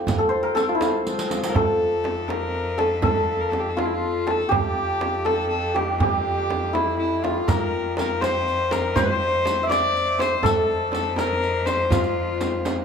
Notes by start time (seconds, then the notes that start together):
Already playing: F4 G4 A4 C5
0.07 riq, frame drum, tombak dum
0.18 A4, tombak ka
0.29 C5
0.43 A#4
0.55 A4, riq, tombak tek, frame drum
0.69 F4
0.75 E4
0.81 F4, riq, tombak tek, frame drum
1.06 riq, tombak ka
1.19 riq
1.30 riq, frame drum
1.44 riq
1.48 A#4
1.55 F2 A4, frame drum, tombak dum
1.69 tombak ka
2.04 tombak tek, frame drum
2.28 A#4, tombak tek, frame drum
2.55 tombak ka
2.78 A4, tombak tek, frame drum
3.02 A4, frame drum, tombak dum
3.16 tombak ka
3.41 A#4
3.50 A4, tombak tek, frame drum
3.60 G4
3.69 A4
3.77 F4, tombak tek, frame drum
3.86 E4
3.95 F4
4.03 tombak ka
4.27 A4, tombak tek, frame drum
4.48 F2 G4 A4, frame drum, tombak dum
4.54 G4
4.65 tombak ka
5.01 tombak tek, frame drum
5.25 A4, tombak tek, frame drum
5.49 A4, tombak ka
5.74 G4, tombak tek, frame drum
6.00 G4, frame drum, tombak dum
6.13 tombak ka
6.50 tombak tek, frame drum
6.73 E4, tombak tek, frame drum
6.99 E4
7.23 F4, tombak tek, frame drum
7.38 tombak ka
7.48 F2 A#4, riq, frame drum, tombak dum
7.61 tombak ka
7.97 A#4, riq, tombak tek, frame drum
8.21 C5, riq, tombak tek, frame drum
8.47 riq, tombak ka
8.71 A#4, riq, tombak tek, frame drum
8.96 C5, riq, tombak dum, frame drum
9.09 tombak ka
9.45 riq, tombak tek, frame drum
9.63 E5
9.69 D5, riq, tombak tek, frame drum
9.96 riq, tombak ka
10.19 C5, riq, tombak tek, frame drum
10.43 F2 A4, riq, frame drum, tombak dum
10.57 tombak ka
10.92 A4, riq, tombak tek, frame drum
11.16 A#4, riq, tombak tek, frame drum
11.43 riq, tombak ka
11.66 C5, riq, tombak tek, frame drum
11.90 F4, riq, frame drum, tombak dum
12.04 riq, tombak ka
12.41 riq, tombak tek, frame drum
12.65 riq, tombak tek, frame drum